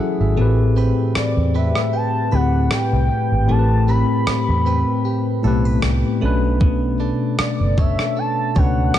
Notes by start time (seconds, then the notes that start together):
Already playing: E3 F#3 A3 C#4 E4 F#4 G#4 E5
0.00 A4 F#5
0.20 G#1 G#4 E5
0.36 A1 A2 A3 C4 G4 B4
0.41 B4
0.76 C4 G4 B4
1.15 C4 D5, muted fingered electric bass stroke, cross-stick
1.37 E2
1.54 C4 G4 B4 E5
1.75 cross-stick
1.93 G4 A5
2.31 D2 A2 A3 C4 G4 B4 F#5
2.36 B4
2.71 G4 G5, cross-stick
2.93 C2
3.32 G#1
3.47 A1 A2 A3 C4 G4 A5
3.52 A#4
3.59 B4
3.88 C4 G4 B4 B5
4.27 C4, muted fingered electric bass stroke, cross-stick
4.48 E2
4.66 C4 G4 B4
5.05 G4
5.42 B1 A2 A3 B3 G4 A4
5.47 B4
5.52 C4
5.65 B4
5.82 C2 G4, cross-stick
6.20 B1 B2 A3 B3 C#4 D4
6.25 B4
6.61 B3, kick
7.00 D4 A4
7.39 D4 D5, muted fingered electric bass stroke, cross-stick
7.60 F#1
7.78 D4 A4 C#5 E5, kick
7.99 cross-stick
8.17 A4 A5
8.54 C#2 B2 A3 C#4 D4 C#5 F#5, kick
8.59 B4
8.94 A4, cross-stick